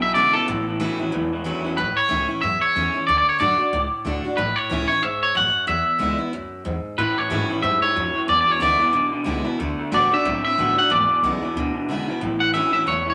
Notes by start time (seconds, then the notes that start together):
Already playing: B1 B2
0.02 E2 B2 E5
0.14 E2 C#3 D3 G#3 B3 E4 D5
0.33 E2 C#3 B3 E4 A4, muted upright bass stroke
0.48 A1 A2 E3
0.67 A2 E3
0.80 A2 E3 F#3 A3 C#4 E4
1.00 A2 F#3 C#4 E4, muted upright bass stroke
1.12 E1 E2 A2 E3
1.32 A2 E3
1.44 A2 E3 F#3 A3 C#4 E4
1.64 A2 F#3 C#4 E4, muted upright bass stroke
1.77 A1 A2 B4
1.97 C#5, muted upright bass stroke
2.08 C#2 E3 A3 C#4 E4
2.28 C#4 E4, muted upright bass stroke
2.41 E2 F#2 E5
2.61 C#5, muted upright bass stroke
2.75 E2 E3 A3 C#4 E4
2.94 C#4 E4, muted upright bass stroke
3.07 D2 D3 D5
3.18 D5
3.27 C#5, muted upright bass stroke
3.39 F#2 D3 A3 D4 F#4 D5
3.58 D4 F#4, muted upright bass stroke
3.72 C#2 A2
3.92 muted upright bass stroke
4.05 D2 D3 A3 D4 F#4
4.24 D4 F#4, muted upright bass stroke
4.37 A1 A2 B4
4.56 C#5, muted upright bass stroke
4.70 C#2 E3 A3 C#4 E4
4.88 C#4 E4 C#5, muted upright bass stroke
5.03 B1 G#2 E5
5.23 C#5, muted upright bass stroke
5.35 A1 F#2 F#5
5.55 muted upright bass stroke
5.67 E2 E5
5.88 muted upright bass stroke
5.99 C#2 D3 G#3 B3 E4
6.19 B3 E4, muted upright bass stroke
6.33 D2 F#2
6.53 muted upright bass stroke
6.65 E2 G#2
6.85 muted upright bass stroke
6.98 A2 E3 B4
7.16 A2 E3 C#5, muted upright bass stroke
7.29 G#2 A2 E3 F#3 A3 C#4 E4
7.49 A2 E3 C#4 E4, muted upright bass stroke
7.62 F#2 G#2 A2 G3 E5
7.81 A2 G3 C#5, muted upright bass stroke
7.94 F2 F#2 A2 F#3
8.14 A2 E3, muted upright bass stroke
8.26 E2 B2 D5
8.41 D5
8.46 E2 B2, muted upright bass stroke
8.51 C#5
8.59 D2 E2 C#3 D3 G#3 B3 E4 D5
8.79 E2 B2 B3 E4, muted upright bass stroke
8.92 B1 E2 B2 D3
9.12 E2 D3, muted upright bass stroke
9.24 C#2 E2 C#3 D3 G#3 B3 E4
9.44 E2 B2 B3 E4, muted upright bass stroke
9.58 D2 D3 A3
9.79 D3 A3, muted upright bass stroke
9.91 A1 D3 A3 B3 D4 F#4 D5
10.11 D3 A3 D4 F#4 E5, muted upright bass stroke
10.24 B1 A2 D3 C4
10.44 D3 C4 E5, muted upright bass stroke
10.57 A1 D3 A3 B3 D4 F#4
10.76 D3 A3 D4 F#4 F#5, muted upright bass stroke
10.90 G#1 E2 B2 D5
11.09 E2 B2, muted upright bass stroke
11.22 B1 E2 C#3 D3 G#3 B3 E4
11.42 E2 B2 B3 E4, muted upright bass stroke
11.56 D2 E2 B2 D3
11.74 E2 D3, muted upright bass stroke
11.88 E2 C#3 D3 G#3 B3 E4
12.08 E2 B2 B3 E4, muted upright bass stroke
12.21 A1 A2 E3
12.40 A2 E3 F#5
12.53 A2 E3 F#3 A3 C#4 E4 E5
12.72 A2 F#3 C#4 E4 E5, muted upright bass stroke
12.86 E1 E2 A2 E3 C#5
13.06 A2 E3
13.10 C#5